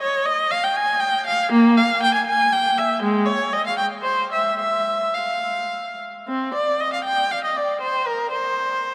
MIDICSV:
0, 0, Header, 1, 2, 480
1, 0, Start_track
1, 0, Key_signature, -4, "minor"
1, 0, Tempo, 483871
1, 10, Time_signature, 3, 2, 24, 8
1, 971, Tempo, 507185
1, 3371, Tempo, 530973
1, 4331, Tempo, 564972
1, 5771, Tempo, 530973
1, 6251, Tempo, 503356
1, 8293, End_track
2, 0, Start_track
2, 0, Title_t, "Viola"
2, 0, Program_c, 0, 41
2, 23, Note_on_c, 0, 73, 80
2, 249, Note_off_c, 0, 73, 0
2, 256, Note_on_c, 0, 75, 85
2, 490, Note_off_c, 0, 75, 0
2, 503, Note_on_c, 0, 77, 89
2, 614, Note_off_c, 0, 77, 0
2, 633, Note_on_c, 0, 79, 78
2, 740, Note_off_c, 0, 79, 0
2, 758, Note_on_c, 0, 80, 92
2, 985, Note_off_c, 0, 80, 0
2, 990, Note_on_c, 0, 79, 91
2, 1221, Note_off_c, 0, 79, 0
2, 1240, Note_on_c, 0, 77, 90
2, 1472, Note_off_c, 0, 77, 0
2, 1483, Note_on_c, 0, 58, 94
2, 1714, Note_off_c, 0, 58, 0
2, 1728, Note_on_c, 0, 77, 96
2, 1952, Note_off_c, 0, 77, 0
2, 1959, Note_on_c, 0, 79, 97
2, 2065, Note_off_c, 0, 79, 0
2, 2071, Note_on_c, 0, 80, 70
2, 2177, Note_off_c, 0, 80, 0
2, 2188, Note_on_c, 0, 80, 94
2, 2415, Note_off_c, 0, 80, 0
2, 2434, Note_on_c, 0, 79, 89
2, 2663, Note_off_c, 0, 79, 0
2, 2668, Note_on_c, 0, 76, 82
2, 2899, Note_off_c, 0, 76, 0
2, 2908, Note_on_c, 0, 56, 87
2, 3125, Note_on_c, 0, 73, 86
2, 3133, Note_off_c, 0, 56, 0
2, 3367, Note_off_c, 0, 73, 0
2, 3382, Note_on_c, 0, 75, 94
2, 3491, Note_off_c, 0, 75, 0
2, 3510, Note_on_c, 0, 77, 60
2, 3606, Note_on_c, 0, 79, 86
2, 3612, Note_off_c, 0, 77, 0
2, 3678, Note_off_c, 0, 79, 0
2, 3833, Note_on_c, 0, 72, 77
2, 4073, Note_off_c, 0, 72, 0
2, 4101, Note_on_c, 0, 76, 71
2, 4335, Note_off_c, 0, 76, 0
2, 4344, Note_on_c, 0, 76, 81
2, 4802, Note_off_c, 0, 76, 0
2, 4805, Note_on_c, 0, 77, 70
2, 5523, Note_off_c, 0, 77, 0
2, 5777, Note_on_c, 0, 60, 69
2, 6014, Note_on_c, 0, 74, 76
2, 6015, Note_off_c, 0, 60, 0
2, 6244, Note_off_c, 0, 74, 0
2, 6250, Note_on_c, 0, 75, 87
2, 6371, Note_off_c, 0, 75, 0
2, 6376, Note_on_c, 0, 77, 63
2, 6482, Note_on_c, 0, 79, 80
2, 6491, Note_off_c, 0, 77, 0
2, 6721, Note_off_c, 0, 79, 0
2, 6739, Note_on_c, 0, 77, 82
2, 6855, Note_off_c, 0, 77, 0
2, 6859, Note_on_c, 0, 75, 56
2, 6974, Note_off_c, 0, 75, 0
2, 6979, Note_on_c, 0, 74, 63
2, 7213, Note_on_c, 0, 72, 69
2, 7217, Note_off_c, 0, 74, 0
2, 7449, Note_off_c, 0, 72, 0
2, 7459, Note_on_c, 0, 70, 71
2, 7694, Note_on_c, 0, 72, 82
2, 7695, Note_off_c, 0, 70, 0
2, 8293, Note_off_c, 0, 72, 0
2, 8293, End_track
0, 0, End_of_file